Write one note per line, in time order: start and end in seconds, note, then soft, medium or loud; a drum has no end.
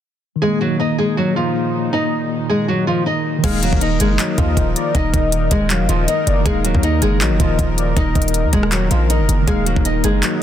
0.36 3.37 D#3 medium
0.42 3.41 A#2 medium
0.42 3.41 D#3 medium
0.42 0.59 G#3 medium
0.42 3.41 D#4 medium
0.42 0.58 G#4 loud
0.47 3.42 A#3 medium
0.61 0.77 F#3 medium
0.61 0.77 F#4 medium
0.79 0.96 D#4 medium
0.79 0.96 D#5 medium
0.98 1.15 G#3 medium
0.98 1.15 G#4 medium
1.17 1.34 F#3 medium
1.17 1.34 F#4 medium
1.36 1.90 F3 medium
1.36 1.89 F4 medium
1.93 2.28 D#4 loud
1.93 2.29 D#5 medium
2.49 2.66 G#3 medium
2.49 2.66 G#4 medium
2.68 2.85 F#3 medium
2.68 2.85 F#4 medium
2.87 3.04 F3 medium
2.87 3.03 F4 medium
3.06 3.41 D#4 medium
3.06 3.42 D#5 medium
3.38 6.39 D#3 medium
3.44 3.71 D#1 loud
3.44 10.43 D#3 medium
3.44 3.61 G#3 medium
3.44 6.43 A#3 medium
3.44 9.43 D#4 medium
3.44 3.60 G#4 loud
3.44 10.43 A#4 medium
3.44 3.79 F5 loud
3.44 kick loud
3.44 closed hi-hat medium
3.44 crash loud
3.50 6.45 D#4 medium
3.63 3.79 F#3 medium
3.63 3.79 F#4 medium
3.63 closed hi-hat medium
3.73 3.99 D#1 loud
3.73 kick loud
3.81 3.98 D#4 medium
3.81 3.98 D#5 medium
3.81 closed hi-hat medium
4.00 4.18 F#1 loud
4.00 4.17 G#3 medium
4.00 4.17 G#4 medium
4.00 closed hi-hat medium
4.19 4.36 F#3 medium
4.19 4.35 F#4 medium
4.19 4.72 D#5 loud
4.19 clap loud
4.19 closed hi-hat medium
4.38 4.56 D#2 loud
4.38 4.92 F3 medium
4.38 4.91 F4 medium
4.38 kick loud
4.38 closed hi-hat medium
4.57 4.75 D#1 loud
4.57 kick loud
4.57 closed hi-hat medium
4.75 4.94 D5 medium
4.75 closed hi-hat medium
4.95 5.13 D#1 loud
4.95 5.30 D#4 medium
4.95 5.31 D#5 medium
4.95 kick loud
4.95 closed hi-hat medium
5.14 5.50 D#1 loud
5.14 5.67 D#5 medium
5.14 kick loud
5.14 closed hi-hat medium
5.32 closed hi-hat medium
5.51 5.82 D#1 loud
5.51 5.68 G#3 medium
5.51 5.68 G#4 medium
5.51 kick loud
5.51 closed hi-hat medium
5.70 5.87 F#3 medium
5.70 5.86 F#4 medium
5.70 5.88 F5 medium
5.70 clap loud
5.70 closed hi-hat medium
5.80 5.89 F1 loud
5.89 6.07 D#1 loud
5.89 6.06 F3 medium
5.89 6.05 F4 medium
5.89 6.24 D#5 medium
5.89 closed hi-hat medium
6.08 6.43 D#4 medium
6.08 6.44 D#5 medium
6.08 closed hi-hat medium
6.27 6.45 F#1 loud
6.27 6.45 D5 medium
6.27 closed hi-hat medium
6.40 9.41 D#3 medium
6.46 6.66 D#1 loud
6.46 6.62 G#3 medium
6.46 9.45 A#3 medium
6.46 6.62 G#4 loud
6.46 6.81 F5 loud
6.46 kick loud
6.46 closed hi-hat medium
6.52 9.47 D#4 medium
6.64 6.74 D1 loud
6.64 6.81 F#3 medium
6.64 6.81 F#4 medium
6.64 closed hi-hat medium
6.75 7.01 D#2 loud
6.75 kick loud
6.83 7.00 D#4 medium
6.83 7.00 D#5 medium
6.83 closed hi-hat medium
7.02 7.23 F#1 loud
7.02 7.19 G#3 medium
7.02 7.18 G#4 loud
7.02 closed hi-hat medium
7.21 7.33 A#1 loud
7.21 7.38 F#3 medium
7.21 7.37 F#4 medium
7.21 7.74 D#5 medium
7.21 clap loud
7.21 closed hi-hat medium
7.31 7.39 F#1 loud
7.40 7.58 D#1 loud
7.40 7.94 F3 medium
7.40 7.93 F4 medium
7.40 kick loud
7.40 closed hi-hat medium
7.59 7.95 D#1 loud
7.59 kick loud
7.59 closed hi-hat medium
7.78 7.96 D5 medium
7.78 closed hi-hat medium
7.97 8.15 D#1 loud
7.97 8.32 D#4 loud
7.97 8.32 D#5 medium
7.97 kick loud
7.97 closed hi-hat medium
8.15 8.46 D#1 loud
8.15 8.68 D#5 medium
8.15 kick loud
8.15 closed hi-hat soft
8.22 closed hi-hat medium
8.28 closed hi-hat medium
8.34 closed hi-hat medium
8.44 8.53 D#2 loud
8.53 8.89 D#1 loud
8.53 8.70 G#3 medium
8.53 8.69 G#4 medium
8.53 kick loud
8.53 closed hi-hat medium
8.63 cross-stick loud
8.72 8.89 F#3 medium
8.72 8.88 F#4 medium
8.72 clap loud
8.72 closed hi-hat medium
8.91 9.21 A#1 loud
8.91 9.08 F3 medium
8.91 9.07 F4 medium
8.91 closed hi-hat medium
9.10 9.45 D#4 medium
9.10 9.46 D#5 medium
9.10 closed hi-hat medium
9.20 9.28 F#1 loud
9.29 9.47 F#1 loud
9.29 closed hi-hat medium
9.42 10.43 D#3 medium
9.47 9.75 D#1 loud
9.47 9.64 G#3 medium
9.47 10.43 A#3 medium
9.47 10.43 D#4 medium
9.47 9.64 G#4 loud
9.47 9.83 F5 loud
9.47 kick loud
9.47 closed hi-hat medium
9.53 10.43 D#4 medium
9.66 9.83 F#3 medium
9.66 9.83 F#4 medium
9.66 closed hi-hat medium
9.76 10.03 D#1 loud
9.76 kick loud
9.85 10.02 D#4 medium
9.85 10.02 D#5 medium
9.85 closed hi-hat medium
10.04 10.22 F#1 loud
10.04 10.21 G#3 medium
10.04 10.20 G#4 medium
10.04 closed hi-hat medium
10.23 10.40 F#3 medium
10.23 10.39 F#4 medium
10.23 10.43 D#5 loud
10.23 clap loud
10.23 closed hi-hat medium